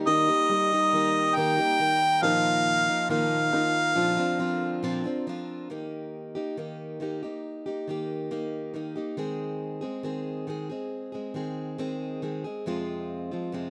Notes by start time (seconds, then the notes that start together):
Already playing: G3 A#3 D#4 A#4
0.06 D#3 A#3 D#4 G4 D#5
0.28 A#3 D#4 G4
0.50 G3
0.73 A#3 D#4 G4
0.93 D#3 A#3 D#4 G4
1.36 D#3 A#3 D#4 G4 G5
1.58 A#3 D#4 G4
1.80 D#3 A#3 D#4 G4
2.22 A#2 D#3 F3 A#3 D#4 F4 F5
2.87 A#3 D#4 F4
3.09 A#2 D#3 A#3 D#4 F4 F5
3.52 D#3 A#3 D#4 F4
3.95 A#2 D3 F3 C4 D4 F4
4.17 C4 D4 F4
4.39 F3 C4 D4 F4
4.83 A#2 F3 C4 D4 F4
5.04 C4 D4 F4
5.27 F3 C4 D4 F4
5.70 D#3 A#3 D#4 G4
6.35 A#3 D#4 G4
6.57 D#3 A#3 D#4 G4
7.00 D#3 A#3 D#4 G4
7.23 A#3 D#4 G4
7.66 A#3 D#4 G4
7.88 D#3 A#3 D#4 G4
8.31 D#3 A#3 D#4 G4
8.74 D#3 A#3 D#4 G4
8.96 A#3 D#4 G4
9.17 D#3 G#3 C4 G#4
9.81 G#3 C4 G#4
10.03 D#3 G#3 C4 G#4
10.47 D#3 G#3 C4 G#4
10.70 G#3 C4 G#4
11.12 G#3 C4 G#4
11.34 D#3 G#3 C4 G#4
11.78 D#3 G#3 C4 G#4
12.22 D#3 G#3 C4 G#4
12.44 G#3 C4 G#4
12.66 F2 C3 F3 G#3 C4 F4
13.31 F3 G#3 C4 F4
13.52 F2 C3 F3 G#3 C4 F4